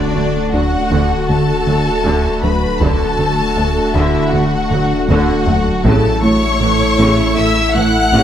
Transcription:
Already playing: D1 D3 A3 D4 F#4 A4 D5
0.14 D2 D3 A3
0.52 D2 F#3 D4 F#4 F#5
0.91 D2 D3
1.29 D2 D3 A3 A4 A5
1.67 D2 D3 F#3 A3
2.05 D2 D3
2.43 D2 F#3 A3 B4 B5
2.80 D1 D2 D3 A3 D4 F#4 A4 A5, taiko
3.18 D2 D3 A3
3.57 D2 F#3 D4
3.95 D2 D3 E4 E5
4.33 D2 D3 A3 F#4 F#5
4.71 D2 D3 F#3 A3, taiko low-mid
5.09 D2 D3 F#4 F#5, taiko low-mid
5.47 D2 F#3 A3, taiko low
5.83 A1 A2 C#3 A3 E4 A4 A5, taiko
6.22 A1 A2 A3 E4 C#5 C#6
6.60 A1 A2 E3 A4
6.99 A1 A2 C#3 A3
7.37 A1 A2 A3 E4 E5 E6
7.74 A1 A2 E3 A3 E4 F#5 F#6
8.13 A1 A2 C#3 A3

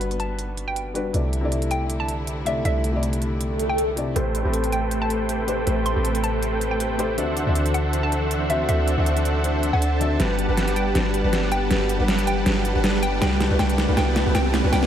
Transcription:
Already playing: G1 G3 B3 D4 F#4 B4
0.01 closed hi-hat
0.11 closed hi-hat
0.20 A5, closed hi-hat
0.39 closed hi-hat
0.57 closed hi-hat
0.68 G5
0.76 closed hi-hat
0.94 G3 D4 F#4 B4, closed hi-hat
1.13 C2 C3 D3 A3 E4 D5, closed hi-hat
1.33 closed hi-hat
1.41 C3 A3 E4 D5
1.52 closed hi-hat
1.62 closed hi-hat
1.71 G5, closed hi-hat
1.90 closed hi-hat
2.00 A5
2.08 closed hi-hat
2.27 closed hi-hat
2.45 C3 A3 E4 D5 E5, closed hi-hat
2.64 C2 C3 A3 E4 D5 E5, closed hi-hat
2.84 closed hi-hat
2.92 C3 A3 E4 D5
3.03 closed hi-hat
3.13 closed hi-hat
3.22 closed hi-hat
3.41 closed hi-hat, swell
3.60 closed hi-hat
3.69 G5
3.78 closed hi-hat
3.96 C3 A3 E4 D5, closed hi-hat
4.15 A1 C3 A3 G4 A4 B4 C5 G5, closed hi-hat
4.35 closed hi-hat
4.43 A1 A3 C4 G4 A4 B4 C5 G5 B5
4.54 closed hi-hat
4.64 closed hi-hat
4.72 G5, closed hi-hat
4.91 closed hi-hat
5.02 A5
5.10 closed hi-hat
5.29 closed hi-hat
5.47 A3 G4 B4 C5, closed hi-hat
5.66 A1 A3 G4 A4 B4 C5 G5, closed hi-hat
5.86 C6, closed hi-hat
5.94 A1 A3 G4 A4 B4 C5 G5 B5
5.98 C4
6.05 closed hi-hat
6.15 closed hi-hat
6.24 A5, closed hi-hat
6.43 closed hi-hat
6.61 closed hi-hat
6.71 G5
6.80 closed hi-hat
6.98 A3 G4 B4 C5, closed hi-hat
7.17 D2 D3 E3 C4 D4 F#4 A4 C5 E5 F#5, closed hi-hat
7.37 closed hi-hat
7.45 D2 D3 C4 D4 F#4 A4 C5 E5 F#5
7.55 closed hi-hat
7.66 closed hi-hat
7.74 F#5, closed hi-hat
7.93 closed hi-hat
8.03 A5
8.12 closed hi-hat
8.31 closed hi-hat
8.49 D3 C4 F#4 E5, closed hi-hat
8.68 D2 D3 C4 D4 F#4 A4 C5 E5 F#5, closed hi-hat
8.88 closed hi-hat
8.96 D2 D3 C4 D4 F#4 A4 C5 E5 F#5
9.00 E5
9.06 closed hi-hat
9.17 closed hi-hat
9.25 closed hi-hat
9.44 closed hi-hat
9.63 closed hi-hat
9.73 D2 D4 A4 C5 E5 F#5 A5
9.82 closed hi-hat
10.00 D3 C4 F#4 E5, closed hi-hat
10.19 G1 G3 B3 D4 F#4 G4 B4 F#5 A5, snare, closed hi-hat, riser
10.39 closed hi-hat
10.46 G1 G3 D4 G4 B4 F#5 A5
10.50 B4
10.57 snare, closed hi-hat
10.68 closed hi-hat
10.76 G5, closed hi-hat
10.94 G1 G3 D4 F#4 G4 B4 F#5 A5, snare, closed hi-hat
11.14 closed hi-hat
11.22 G1 G3 D4 G4 B4 F#5 A5
11.26 B4
11.33 snare, closed hi-hat
11.52 G5, closed hi-hat
11.69 G1 G3 D4 F#4 G4 B4 F#5 A5, snare, closed hi-hat
11.89 closed hi-hat
11.97 G1 G3 D4 G4 B4 F#5 A5
12.08 snare, closed hi-hat
12.18 closed hi-hat
12.27 G5, closed hi-hat
12.45 G1 G3 D4 F#4 G4 B4 F#5 A5, snare, closed hi-hat
12.65 closed hi-hat
12.73 G1 G3 D4 G4 B4 F#5 A5
12.84 snare, closed hi-hat
13.02 G5, closed hi-hat
13.21 C2 D3 G3 A3 D4 E4 F#4 G4 B4 F#5 G5 A5, snare, closed hi-hat
13.40 snare, closed hi-hat
13.48 C2 G3 D4 F#4 G4 B4 F#5 A5
13.53 B4
13.58 C2 G3 D4 G4 B4 F#5 G5 A5, snare, closed hi-hat
13.70 closed hi-hat
13.78 snare, closed hi-hat
13.86 C2 G3 D4 F#4 G4 B4 F#5 A5
13.90 B4
13.96 C2 G3 D4 F#4 G4 B4 F#5 G5 A5, snare, closed hi-hat
14.16 snare, closed hi-hat
14.24 C2 G3 D4 F#4 G4 B4 F#5 A5
14.34 C2 G3 D4 F#4 G4 B4 F#5 G5 A5, snare, closed hi-hat
14.54 snare, closed hi-hat
14.62 C2 G3 D4 F#4 G4 B4 F#5 A5
14.72 C2 G3 D4 F#4 G4 B4 F#5 G5 A5, snare, closed hi-hat
14.83 snare

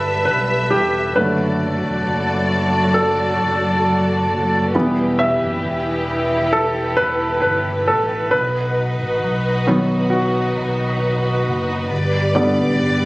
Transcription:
Already playing: G1 G3 G4 A4 B4 D5 E5
0.25 B1 B4
0.70 E1 G4
1.16 F#1 D3 F#3 A3 F#4 A4 B4 D5
1.84 E1
2.06 F#1
2.94 A4
3.41 F#1
4.30 F#1
4.74 E1 E3 G3 B3 E4 G4 B4
5.19 E5
5.42 F#1
5.64 E1
6.53 A4
6.97 E1 B4
7.42 G1 B4
7.88 A1 A4
8.31 B1 D#4 F#4 B4
9.00 A1
9.22 B1
9.67 D#3 F#3 B3
10.10 F#4
10.57 B1
11.46 F#1
11.90 G1 G3 G4 D5
12.35 D3 G3 B3 D5
12.58 A1
12.80 G1

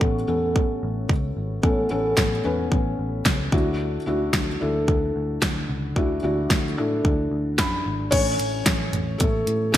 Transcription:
Already playing: A2 B3 C#4 A4
0.01 A1, kick
0.27 E2 B3 C#4 A4
0.56 A1, kick
0.83 A1
1.09 C#2, kick
1.37 G#1
1.63 A1 A2 B3 C#4 A4, kick
1.90 A1 B3 C#4 A4
2.17 A1, kick, snare
2.44 E2 B3 C#4 B4
2.72 A1, kick
2.99 A1
3.25 C#2, kick, snare
3.52 D2 D3 D4 E4 F#4, kick
4.06 D2 D4 E4 F#4
4.33 D2, kick, snare
4.60 D2 D4 E4 A4
4.88 D2, kick
5.16 D2
5.42 D2, kick, snare
5.69 C#2 D3
5.96 D2 D4 E4 F#4, kick
6.23 D2 D4 E4 F#4
6.50 D2, kick, snare
6.77 A2 D4 E4 A4
7.05 D2, kick
7.31 D2
7.58 F#2 B5, kick, snare
7.86 G#1
8.11 A1 E3 A3 C#4 C#5, kick, closed hi-hat, crash
8.39 A1, closed hi-hat
8.66 A1, kick, snare, closed hi-hat
8.93 A1, closed hi-hat, floor tom
9.18 A1 A3 A4, kick, closed hi-hat
9.47 A2, closed hi-hat
9.72 A1 G#4, kick

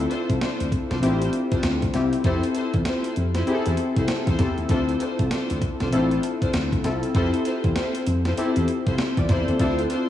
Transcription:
Already playing: C4 E4 F4 A4
0.10 D4 F4 A4 C5, closed hi-hat
0.30 C2, kick, closed hi-hat
0.41 D4 F4 A4 C5, snare, closed hi-hat
0.60 D2, closed hi-hat
0.72 kick, closed hi-hat
0.90 C2 D4 F4 A4 C5, snare, closed hi-hat
1.02 A1 C4 D4 E4 F4 G4 A4 C5, closed hi-hat
1.22 closed hi-hat
1.33 closed hi-hat
1.51 D4 F4 A4 C5, kick, closed hi-hat
1.63 D2, snare, closed hi-hat
1.82 kick, closed hi-hat
1.94 C2 C4 E4 F4 G4, snare, closed hi-hat
2.13 closed hi-hat
2.24 F2 C4 E4 F4 G4 A4 C5, kick, closed hi-hat
2.43 closed hi-hat
2.55 E4 F4 A4 C5, closed hi-hat
2.74 E2, kick, closed hi-hat
2.85 E4 F4 A4 C5, snare, closed hi-hat
3.04 closed hi-hat
3.16 F2, closed hi-hat
3.35 E4 F4 A4 C5, snare, closed hi-hat
3.47 C4 E4 F4 G4 G#4 A4 C5, muted slap bass stroke, closed hi-hat
3.55 A4
3.66 E2, closed hi-hat
3.77 closed hi-hat
3.96 C2 E4 F4 A4 C5, kick, closed hi-hat
4.08 snare, closed hi-hat
4.27 E2 E4 F4 A4 C5, kick, closed hi-hat
4.39 E2 C4 E4 G4 A4, kick, snare, closed hi-hat
4.58 D#2, closed hi-hat
4.69 D2 C4 D4 E4 F4 A4 C5, kick, closed hi-hat
4.89 closed hi-hat
5.00 D4 F4 A4 C5, closed hi-hat
5.19 C2, kick, closed hi-hat
5.31 D4 F4 A4 C5, snare, closed hi-hat
5.50 D2, closed hi-hat
5.62 kick, closed hi-hat
5.80 C2 D4 F4 A4 C5, snare, closed hi-hat
5.92 A1 C4 D4 E4 F4 A4 C5, closed hi-hat
6.11 closed hi-hat
6.23 closed hi-hat
6.42 D4 F4 A4 C5, kick, closed hi-hat
6.53 D2, snare, closed hi-hat
6.72 kick, closed hi-hat
6.84 C2 C4 E4 F4 A4, snare, closed hi-hat
7.03 closed hi-hat
7.15 F2 C4 E4 F4 G4 A4 C5, kick, closed hi-hat
7.34 closed hi-hat
7.45 E4 F4 A4 C5, closed hi-hat
7.64 E2, kick, closed hi-hat
7.75 E4 F4 A4 C5, snare, closed hi-hat
7.95 closed hi-hat
8.07 F2, closed hi-hat
8.25 E4 F4 A4 C5, snare, closed hi-hat
8.37 C4 E4 F4 G4 A4 C5, muted slap bass stroke, closed hi-hat
8.56 E2, closed hi-hat
8.68 closed hi-hat
8.87 C2 E4 F4 A4 C5, kick, closed hi-hat
8.98 snare, closed hi-hat
9.17 E2 F4 D5, kick, closed hi-hat
9.29 E2 E4 F4 A4 C5, kick, snare, closed hi-hat
9.48 D#2 C4 A4, closed hi-hat
9.59 D2 C4 D4 E4 F4 A4 C5, kick, closed hi-hat
9.79 closed hi-hat
9.90 D4 F4 A4 C5, closed hi-hat

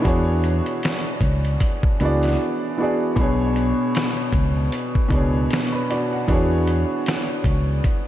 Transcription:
0.01 E3 B3 D4 F#4
0.05 E2 G#4 C#5, kick, closed hi-hat
0.44 closed hi-hat
0.66 closed hi-hat
0.83 finger snap, snare, closed hi-hat
1.21 C#2, kick, closed hi-hat
1.45 closed hi-hat
1.60 kick, closed hi-hat
1.83 kick
1.99 C#2 E3 B3 D4 F#4, closed hi-hat
2.03 G#4 D5
2.23 snare, closed hi-hat
2.76 E3 B3 D4
2.81 F#4 G#4 D5
3.16 B1 B2 B3 D4, kick, closed hi-hat
3.20 G#4 C#5
3.56 closed hi-hat
3.95 finger snap, snare, closed hi-hat
4.33 C#2, kick, closed hi-hat
4.72 closed hi-hat
4.95 kick
5.08 C#2 B2 B3 D4, kick, closed hi-hat
5.13 G#4 C#5
5.51 finger snap, snare, closed hi-hat
5.72 D4 B4
5.90 F#4 D5, closed hi-hat
6.12 F#5
6.26 E2 E3 B3 D4 F#4, kick, closed hi-hat
6.31 G#4 C#5
6.67 closed hi-hat
7.06 finger snap, snare, closed hi-hat
7.44 C#2, kick, closed hi-hat
7.84 kick, closed hi-hat

